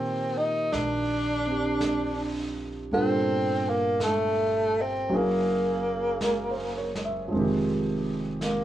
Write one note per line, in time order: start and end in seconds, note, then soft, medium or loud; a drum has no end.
0.00 0.69 A#2 medium
0.00 2.92 D#3 soft
0.00 2.91 F3 medium
0.00 2.92 A#3 soft
0.00 0.39 C4 medium
0.00 1.46 C4 soft
0.00 1.49 G4 medium
0.38 0.74 D#4 medium
0.73 2.87 A#1 medium
0.73 2.56 D4 medium
0.73 brush sweep soft
0.73 snare soft
1.47 2.91 C4 soft
1.47 2.92 D4 soft
1.47 2.93 G4 soft
1.81 brush sweep soft
1.81 snare soft
1.81 hi-hat pedal medium
2.91 5.06 G1 medium
2.91 5.11 A#2 soft
2.91 5.11 G3 soft
2.91 3.71 C4 medium
2.91 5.11 D4 soft
2.91 5.11 F4 soft
2.91 5.12 A4 medium
2.91 brush sweep soft
3.69 4.05 A#3 medium
4.00 brush sweep soft
4.00 snare soft
4.00 hi-hat pedal soft
4.04 4.83 A3 medium
4.81 5.18 C4 medium
5.09 7.28 F#1 medium
5.09 7.32 F#3 soft
5.09 7.32 A#3 soft
5.09 7.33 C#4 soft
5.09 brush sweep soft
5.13 7.00 A#3 medium
5.13 7.34 E4 soft
5.13 7.34 G#4 medium
6.21 6.75 A#4 soft
6.21 brush sweep soft
6.21 snare soft
6.21 hi-hat pedal soft
6.50 6.98 C5 soft
6.77 7.11 C#5 soft
6.95 snare soft
7.05 7.43 E5 soft
7.28 8.64 F3 soft
7.28 8.64 G#3 soft
7.28 brush sweep soft
7.32 8.64 F1 medium
7.32 8.64 D#3 soft
7.32 8.64 C4 soft
7.39 8.64 G4 soft
8.41 8.64 A#3 medium
8.41 brush sweep soft
8.41 snare soft
8.41 hi-hat pedal soft